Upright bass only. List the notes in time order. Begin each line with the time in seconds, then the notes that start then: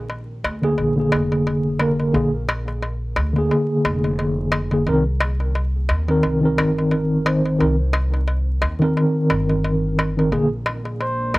Already playing: A#1
0.44 D2
0.78 A#1
1.12 F1
2.14 A#1
3.17 D2
3.85 F1
4.87 C2
5.90 D#2
6.24 C2
6.58 G1
7.60 C2
8.62 D#2
9.31 G1
10.32 A#1
11.35 D2